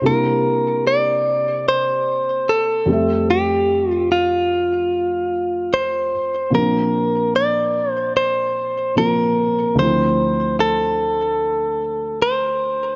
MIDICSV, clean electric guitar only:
0, 0, Header, 1, 2, 480
1, 0, Start_track
1, 0, Tempo, 810811
1, 27, Time_signature, 4, 2, 24, 8
1, 7671, End_track
2, 0, Start_track
2, 0, Title_t, "Clean electric guitar"
2, 0, Program_c, 0, 27
2, 38, Note_on_c, 0, 70, 104
2, 514, Note_off_c, 0, 70, 0
2, 517, Note_on_c, 0, 74, 99
2, 995, Note_off_c, 0, 74, 0
2, 997, Note_on_c, 0, 72, 103
2, 1476, Note_on_c, 0, 69, 87
2, 1486, Note_off_c, 0, 72, 0
2, 1954, Note_off_c, 0, 69, 0
2, 1956, Note_on_c, 0, 67, 100
2, 2312, Note_off_c, 0, 67, 0
2, 2312, Note_on_c, 0, 65, 100
2, 2435, Note_off_c, 0, 65, 0
2, 2437, Note_on_c, 0, 65, 92
2, 3396, Note_on_c, 0, 72, 96
2, 3421, Note_off_c, 0, 65, 0
2, 3874, Note_off_c, 0, 72, 0
2, 3876, Note_on_c, 0, 70, 100
2, 4354, Note_off_c, 0, 70, 0
2, 4356, Note_on_c, 0, 74, 104
2, 4682, Note_off_c, 0, 74, 0
2, 4682, Note_on_c, 0, 72, 104
2, 4808, Note_off_c, 0, 72, 0
2, 4835, Note_on_c, 0, 72, 95
2, 5313, Note_off_c, 0, 72, 0
2, 5316, Note_on_c, 0, 70, 92
2, 5794, Note_off_c, 0, 70, 0
2, 5796, Note_on_c, 0, 72, 99
2, 6248, Note_off_c, 0, 72, 0
2, 6278, Note_on_c, 0, 69, 93
2, 7234, Note_off_c, 0, 69, 0
2, 7236, Note_on_c, 0, 72, 82
2, 7671, Note_off_c, 0, 72, 0
2, 7671, End_track
0, 0, End_of_file